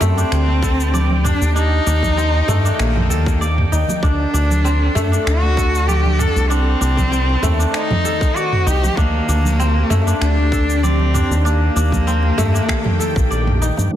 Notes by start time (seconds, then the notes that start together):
Already playing: C4 D4 G4 G5
0.01 F#2 A3 C4, mid tom, high conga, cabasa
0.17 D4, cabasa
0.32 D2, finger snap, cabasa
0.48 high conga
0.63 A4, kick, high bongo, cabasa
0.80 cabasa
0.94 D5, low conga, cabasa
1.09 high conga, low conga
1.24 D4, mid tom, cabasa
1.41 D#2, high conga, cabasa
1.55 D#3 D4 D#4, cabasa
1.86 D#2 D4, high conga, cabasa
2.03 kick, low conga, cabasa
2.17 C4, cabasa
2.34 high bongo
2.48 G2 A3, mid tom, high conga, cabasa
2.65 D4, cabasa
2.79 A#1 A#3, finger snap, cabasa
2.96 mid tom, high bongo, high conga, low conga
3.10 D#2 A4, cabasa
3.26 kick, high bongo, cabasa
3.41 D5, cabasa
3.58 mid tom, high conga
3.72 D#2 D#4, cabasa
3.88 high bongo, high conga, low conga, cabasa
4.03 D2 D4 A4 F#5, kick, cabasa
4.34 D2 D4, high conga, cabasa
4.50 low conga, cabasa
4.65 C4, cabasa
4.95 F#2 A3, mid tom, high conga, cabasa
5.12 D4, cabasa
5.26 D2 F#4, finger snap, cabasa
5.43 high conga
5.57 A4, kick, high bongo, cabasa
5.75 cabasa
5.88 G4 D5, low conga, cabasa
6.05 high conga, low conga
6.19 D4 A4, mid tom, cabasa
6.36 C2, high conga, cabasa
6.50 D#3 C4 D4 C5, cabasa
6.81 C2 D4, high conga, cabasa
6.97 kick, low conga, cabasa
7.12 C4, cabasa
7.30 high bongo
7.43 D#2 A3, mid tom, high conga, cabasa
7.59 D4, cabasa
7.74 D#4, finger snap, cabasa
7.90 mid tom, high bongo, high conga, low conga
8.05 A4, cabasa
8.21 kick, high bongo, cabasa
8.36 F#4 D5, cabasa
8.52 mid tom, high conga
8.66 C2 D#4 G4, cabasa
8.83 high bongo, high conga, low conga, cabasa
8.97 D2 A#3 D4 G4, kick, cabasa
9.28 D2 D4, high conga, cabasa
9.45 low conga, cabasa
9.59 C4, cabasa
9.90 F#2 A3, mid tom, high conga, cabasa
10.07 D4, cabasa
10.21 D2 D4, finger snap, cabasa
10.38 high conga
10.52 A4, kick, high bongo, cabasa
10.70 cabasa
10.83 C4 D5, low conga, cabasa
10.99 high conga, low conga
11.14 D4, mid tom, cabasa
11.31 D#2, high conga, cabasa
11.45 D#3 A#3 D4 G4 G5, cabasa
11.76 D#2 D4, high conga, cabasa
11.92 kick, low conga, cabasa
12.07 C4, cabasa
12.23 high bongo
12.38 G2 A3, mid tom, high conga, cabasa
12.54 D4, cabasa
12.69 finger snap, kick, cabasa
12.84 mid tom, high bongo, high conga, low conga
13.00 A4, cabasa
13.16 A#1, kick, high bongo, cabasa
13.30 A#1 D5, cabasa
13.47 mid tom, high conga
13.62 D#4, cabasa
13.77 G2, high bongo, high conga, low conga, cabasa
13.91 F#3 A3 D4